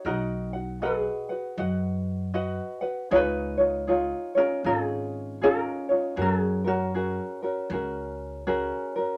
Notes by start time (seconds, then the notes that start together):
0.05 B1 D#4 F#4 A#4 D#5 F#5
0.53 F#4 F#5
0.82 F#4 G#4 B4 D#5 F#5
1.29 F#4 B4 F#5
1.58 F#2 F#4 B4 D#5 F#5
2.34 F#4 B4 D#5 F#5
2.81 F#4 B4 F#5
3.11 C#2 D#4 F4 G#4 C#5
3.16 B4
3.57 D#4 F4 C#5
3.87 D#4 F4 G#4 C#5
4.35 C#4 D#4 F4 A#4 C#5
4.64 G#1 C#4 D#4 F4 G#4 C#5
5.41 C#4 D#4 F4 G#4 A#4 C#5
5.89 D#4 F4 C#5
6.16 F#2 C#4 F#4 G#4 A#4
6.22 C#4 A4
6.40 G#4
6.64 C#4 F#4 A#4
6.94 C#4 F#4 G#4 A#4
7.42 C#4 F#4 A#4
7.70 C#2 C#4 F#4 G#4 A#4
8.47 C#4 F#4 G#4 A#4
8.96 C#4 F#4 A#4